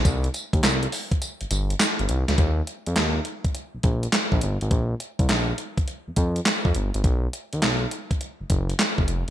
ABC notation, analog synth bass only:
X:1
M:4/4
L:1/16
Q:"Swing 16ths" 1/4=103
K:Eb
V:1 name="Analog synth bass" clef=bass
C,,2 z E,, C,,2 z3 G,,, G,,,2 z G,,, C,, D,, | E,,2 z F,, E,,2 z3 B,,, B,,,2 z B,,, G,,, A,,, | B,,,2 z C,, B,,,2 z3 F,, F,,2 z F,, G,,, A,,, | =B,,,2 z ^D,, B,,,2 z3 ^F,,, F,,,2 z F,,, =F,,, z |]